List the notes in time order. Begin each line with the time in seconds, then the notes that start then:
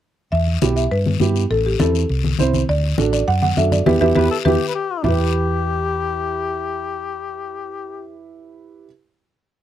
0.32 E2 E5, long guiro
0.47 high conga
0.62 B1 B3 E4 G4, high conga, short guiro
0.76 E5, short guiro
0.91 G2 B4, high conga, long guiro
1.06 high conga
1.20 G2 B3 E4 G4, high conga, short guiro
1.36 short guiro
1.50 A1 A4, long guiro
1.65 G4, high conga
1.80 E2 C4 E4 A4, high conga, short guiro
1.95 short guiro
2.09 C2, high conga, long guiro
2.24 high conga
2.39 C2 C4 E4 C5, high conga, short guiro
2.54 high conga, short guiro
2.69 D2 D5, long guiro
2.83 high conga
2.98 A1 D4 F#4 A4, high conga, short guiro
3.13 D5, short guiro
3.28 F#2 F#5, high conga, long guiro
3.42 F#5, high conga
3.57 F#2 D4 F#4 A4 E5, high conga, short guiro
3.72 D5, high conga, short guiro
3.86 E2 B3 E4 G4 B4 E5, high conga, long guiro
4.01 E2 B3 E4 G4 B4 E5, high conga, long guiro
4.15 E2 B3 E4 G4 B4 E5, high conga, long guiro
4.31 A4
4.45 E2 B3 E4 G4 B4 E5, high conga
4.68 B4
4.75 G4
5.03 E2 E4 G4 E5, low conga, long guiro
5.08 B4